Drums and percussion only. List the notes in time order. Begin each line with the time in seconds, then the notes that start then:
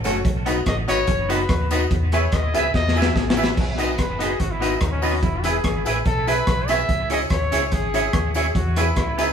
0.04 cross-stick, closed hi-hat, tambourine
0.25 kick, closed hi-hat
0.46 closed hi-hat, tambourine
0.66 kick, cross-stick, closed hi-hat
0.88 closed hi-hat, tambourine
1.07 kick, closed hi-hat
1.30 closed hi-hat, tambourine
1.49 kick, cross-stick, closed hi-hat
1.71 closed hi-hat, tambourine
1.91 kick, closed hi-hat
2.12 cross-stick, closed hi-hat, tambourine
2.32 kick, cross-stick, closed hi-hat
2.54 closed hi-hat, tambourine
2.74 kick, snare
2.88 snare
2.96 tambourine
3.02 snare
3.16 kick, snare
3.30 snare
3.37 tambourine
3.44 snare
3.57 kick, crash
3.78 closed hi-hat, tambourine
3.98 kick, cross-stick, closed hi-hat
4.20 closed hi-hat, tambourine
4.40 kick, closed hi-hat
4.62 closed hi-hat, tambourine
4.81 kick, cross-stick, closed hi-hat
5.02 open hi-hat, tambourine
5.23 kick, closed hi-hat
5.44 closed hi-hat, tambourine
5.64 kick, cross-stick, closed hi-hat
5.86 closed hi-hat, tambourine
6.05 kick, closed hi-hat
6.27 closed hi-hat, tambourine
6.47 kick, cross-stick, closed hi-hat
6.68 cross-stick, closed hi-hat, tambourine
6.89 kick, closed hi-hat
7.10 closed hi-hat, tambourine
7.30 kick, cross-stick, closed hi-hat
7.52 closed hi-hat, tambourine
7.72 kick, closed hi-hat
7.94 closed hi-hat, tambourine
8.13 kick, cross-stick, closed hi-hat
8.34 closed hi-hat, tambourine
8.55 kick, closed hi-hat
8.76 cross-stick, closed hi-hat, tambourine
8.96 kick, cross-stick, closed hi-hat
9.18 closed hi-hat, tambourine